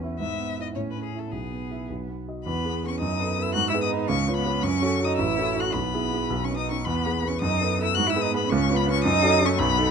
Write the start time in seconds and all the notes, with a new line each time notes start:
Already playing: E2 B3 C#4
0.03 E4 E5
0.19 G#2 B3 E5
0.40 B3
0.57 E4 E5
0.61 D#5
0.75 A2 C#4 C#5
0.91 B4
0.96 C#4
1.04 G#4
1.14 E4 E5
1.18 A4
1.31 B1 B3 G#4
1.52 B3
1.71 E4 E5
1.90 B1
2.09 B3
2.28 F#4 D#5
2.44 E2 B3 B5
2.64 B3 G#4 B4
2.84 B3 C#4 G#4 B4
2.88 C#6
2.99 F#2 D#4 D#6
3.20 B3 A4 B4
3.38 B3 E4 A4 B4 E6
3.54 G#2 F#4 F#6
3.69 E4 E6
3.74 B3 G#4 B4
3.82 D#4 D#6
3.92 B3 G#4 B4
4.08 C#2 C#4 C#6
4.28 C#4 F4 B4
4.36 B3 B5
4.46 C#4 F4 B4
4.63 F#2 C#4 C#6
4.81 C#4 F#4 A4
5.00 C#4 F#4 A4
5.04 D#4 D#6
5.17 A1 E4 E6
5.37 C#4 F#4 A4
5.56 C#4 F#4 A4 F#6
5.61 F#4
5.73 B1 B3 B5
5.93 B3 E4 G#4
6.12 B3 E4 G#4
6.30 B1
6.43 C#4 C#6
6.50 B3 D#4 B4
6.56 D#4 D#6
6.69 B3 C#4 D#4 B4 C#6
6.85 E2 B3 B5
7.05 B3 G#4 B4
7.24 B3 C#4 G#4 B4 C#6
7.41 F#2 D#4 D#6
7.61 B3 A4 B4
7.78 B3 E4 A4 B4
7.83 E6
7.94 G#2 F#4 F#6
8.07 E4 E6
8.16 B3 G#4 B4
8.21 D#4 D#6
8.34 B3 G#4 B4 B5
8.49 C#2 C#4 C#6
8.69 C#4 F4 B4
8.74 B3 B5
8.87 C#4 F4 B4
8.91 C#6
9.03 F#2 D#4 D#6
9.22 C#4 F#4 A4
9.41 C#4 F#4 A4
9.45 C#4 C#6
9.59 B1 B3 B5
9.78 B3 D#4 A4